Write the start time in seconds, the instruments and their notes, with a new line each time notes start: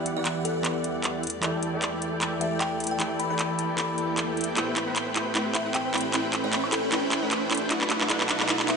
Already playing: string section E2 E3 G3 D5 F#5, supersaw synth E3 E4 G4 D5 F#5, tine electric piano E3 B3 G4 D5 F#5, riser
0.06 closed hi-hat
0.16 supersaw synth E3 E4 G4 D5 F#5, kalimba D5
0.25 kalimba D5, clap, closed hi-hat
0.45 kalimba A4, closed hi-hat
0.63 tine electric piano E3 B3 G4 D5 F#5, clap, closed hi-hat
0.84 closed hi-hat
1.04 clap, closed hi-hat
1.23 string section A3 G4, closed hi-hat
1.27 closed hi-hat
1.30 closed hi-hat
1.41 tine electric piano E3 E4 G4 A4, supersaw synth E3 E4 A4 D5 G5, clap, closed hi-hat
1.45 tine electric piano D5
1.63 closed hi-hat
1.73 supersaw synth E3 E4 A4 D5 G5
1.82 clap, closed hi-hat
2.02 closed hi-hat
2.21 clap, closed hi-hat
2.39 tine electric piano E3 E4 G4 A4, kalimba E5, closed hi-hat
2.43 tine electric piano D5
2.61 kalimba G5, clap, closed hi-hat
2.80 closed hi-hat
2.84 closed hi-hat
2.87 closed hi-hat
2.91 kalimba G5
2.98 tine electric piano E3 E4 G4 A4, supersaw synth E3 E4 A4 D5 G5, clap, closed hi-hat
3.02 tine electric piano D5
3.19 kalimba B5, closed hi-hat
3.30 supersaw synth E3 E4 A4 D5 G5, kalimba B5
3.39 clap, closed hi-hat
3.59 closed hi-hat
3.76 tine electric piano E3 E4 G4 A4 D5, kalimba B5, clap, closed hi-hat
3.98 closed hi-hat
4.18 clap, closed hi-hat
4.27 tine electric piano E3 E4 G4 A4 E5
4.37 closed hi-hat
4.41 closed hi-hat
4.44 closed hi-hat
4.57 string section A2 C4 B5, supersaw synth A3 E4 B4 C5 G5, synth arpeggio sound E4, clap, closed hi-hat
4.68 synth arpeggio sound G4
4.76 synth arpeggio sound E4, clap, closed hi-hat
4.87 supersaw synth A3 E4 B4 C5 G5, synth arpeggio sound C5
4.96 synth arpeggio sound E5, clap, closed hi-hat
5.07 synth arpeggio sound C5
5.16 synth arpeggio sound E4, clap, closed hi-hat
5.26 synth arpeggio sound G4
5.35 supersaw synth A3 E4 B4 C5 G5, synth arpeggio sound E4, clap, closed hi-hat
5.46 synth arpeggio sound G4
5.55 synth arpeggio sound E4, kalimba E5, clap, closed hi-hat
5.66 supersaw synth A3 E4 B4 C5 G5, synth arpeggio sound C5
5.75 synth arpeggio sound E5, kalimba G5, clap, closed hi-hat
5.85 synth arpeggio sound C5
5.94 synth arpeggio sound E4, kalimba D5, clap, closed hi-hat
5.98 closed hi-hat
6.01 closed hi-hat
6.05 synth arpeggio sound G4
6.13 supersaw synth A3 E4 B4 C5 G5, synth arpeggio sound E4, clap, closed hi-hat
6.24 synth arpeggio sound G4
6.33 synth arpeggio sound E4, clap, closed hi-hat
6.44 supersaw synth A3 E4 B4 C5 G5, synth arpeggio sound C5, kalimba D5
6.53 kalimba D5, synth arpeggio sound E5, clap, closed hi-hat
6.64 synth arpeggio sound C5, high woodblock
6.72 synth arpeggio sound E4, kalimba A4, clap, closed hi-hat
6.83 synth arpeggio sound G4
6.92 supersaw synth A3 E4 B4 C5 G5, synth arpeggio sound E4, clap, closed hi-hat
7.03 synth arpeggio sound G4
7.12 synth arpeggio sound E4, clap, closed hi-hat
7.22 supersaw synth A3 E4 B4 C5 G5, synth arpeggio sound C5
7.31 synth arpeggio sound E5, clap, closed hi-hat
7.42 synth arpeggio sound C5
7.51 synth arpeggio sound E4, clap, closed hi-hat
7.55 closed hi-hat
7.57 closed hi-hat
7.62 synth arpeggio sound G4
7.70 string section B2 F#3 D4 A4, supersaw synth A3 E4 B4 F#5, synth arpeggio sound E4, clap, closed hi-hat
7.81 synth arpeggio sound F#4, clap
7.90 synth arpeggio sound E4, clap, closed hi-hat
8.01 supersaw synth A3 E4 B4 F#5, synth arpeggio sound B4, clap
8.10 supersaw synth A3 E4 B4 F#5, synth arpeggio sound E4, clap, closed hi-hat
8.21 synth arpeggio sound F#4, clap
8.29 synth arpeggio sound E4, clap, closed hi-hat
8.40 supersaw synth A3 E4 B4 F#5, synth arpeggio sound B4, clap
8.49 supersaw synth A3 E4 B4 F#5, synth arpeggio sound E4, clap, closed hi-hat
8.60 synth arpeggio sound F#4, clap
8.69 synth arpeggio sound E4, kalimba E5, clap, closed hi-hat